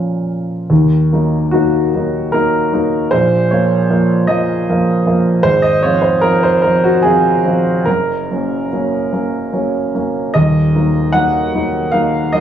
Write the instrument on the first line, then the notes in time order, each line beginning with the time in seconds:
upright piano
Already playing: A#2 F3 C#4 F4 A#4
0.70 D#2 D#3
1.13 F#3 A#3 D#4
1.52 F#3 A#3 D#4 F#4
1.95 F#3 A#3 D#4
2.32 F#3 A#3 D#4 A#4
2.73 F#3 A#3 D#4
3.11 A#1 A#2 C5
3.51 F3 A#3 F4 C#5
3.90 F3 A#3 F4
4.27 F3 A#3 F4 D#5
4.69 F3 A#3 F4
5.06 F3 A#3 F4
5.43 G#1 G#2 C5
5.62 D#5
5.82 F3 C4 F4 C#5
6.02 C5
6.21 F3 C4 F4 A#4
6.43 C5
6.62 F3 C4 F4 A#4
6.84 F#4
7.02 F3 C4 F4 G#4
7.46 F3 C4 F4
7.86 F#1 F#2 A#4
8.31 F#3 A#3 C#4
8.73 F#3 A#3 C#4
9.13 F#3 A#3 C#4
9.53 F#3 A#3 C#4
9.95 F#3 A#3 C#4
10.34 D#1 D#2 D#5
10.75 F#3 A#3 D#4
11.12 F#3 A#3 D#4 F#5
11.54 F#3 A#3 D#4
11.92 F#3 A#3 D#4 F5
12.32 F#3 A#3 D#4 D#5